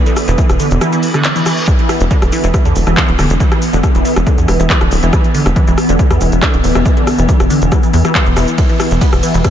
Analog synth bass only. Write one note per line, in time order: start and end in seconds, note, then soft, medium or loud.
0.28 0.36 E1 loud
0.49 0.58 E1 loud
0.71 0.79 E1 loud
2.00 2.09 E1 loud
2.22 2.30 E1 loud
2.44 2.52 E1 loud
2.65 2.74 E2 medium
2.75 2.85 E1 medium
2.87 2.95 E1 medium
3.08 3.17 D1 medium
3.19 3.28 D1 loud
3.30 3.38 E1 loud
3.73 3.81 E1 loud
3.95 4.03 E1 loud
4.16 4.25 E1 loud
4.38 4.46 E2 medium
4.48 4.57 E1 medium
4.59 4.68 E1 medium
4.81 4.89 D1 medium
4.91 5.01 D1 loud
5.03 5.11 E1 loud
5.46 5.54 E1 loud
5.67 5.76 E1 loud
5.89 5.97 E1 loud
6.11 6.19 E2 medium
6.21 6.30 E1 medium
6.32 6.40 E1 medium
6.54 6.62 D1 medium
6.64 6.73 D1 loud
6.75 6.84 E1 loud
7.18 7.27 E1 loud
7.40 7.48 E1 loud
7.62 7.70 E1 loud
7.94 8.03 E2 loud
8.26 8.35 E1 medium
8.37 8.46 E1 loud
8.91 8.99 E1 loud
9.13 9.21 E1 loud
9.34 9.43 E1 loud